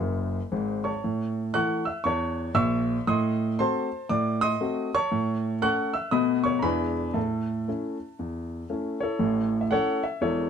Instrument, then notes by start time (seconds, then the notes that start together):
grand piano
Already playing: B4 G#5 B5
0.00 F#1 F#2
0.52 G#1 G#2
0.84 C#5 A5 C#6
1.04 A2
1.54 E3 A3 E4 F#5 C#6 F#6
1.85 E5 E6
2.04 E2 C#5 A5 C#6
2.54 A#1 A#2 E5 C#6 E6
3.07 A2 D#5 C6 D#6
3.59 A3 C4 F#4 C5 A5 C6
4.09 A2 D5 D6
4.41 D#5 C6 D#6
4.61 A3 C4 F#4
4.95 C#5 A5 C#6
5.12 A2
5.62 A3 C#4 A4 F#5 C#6 F#6
5.93 E5 E6
6.11 B2 A3 B3 F#4 D#5 B5 D#6
6.44 C#5 C#6
6.59 E2 G#3 A#5 B5
6.63 D4 E4 B4 G#5
7.14 A2 A4 E5 A5
7.68 A3 C#4 E4
8.19 E2
8.70 A3 C#4 E4
9.00 E4 A4 C#5
9.19 A1 A2
9.61 E5
9.71 A3 C#4 E4 A4 C#5 F#5
10.04 E5
10.21 E1 E2 E4 A4 C#5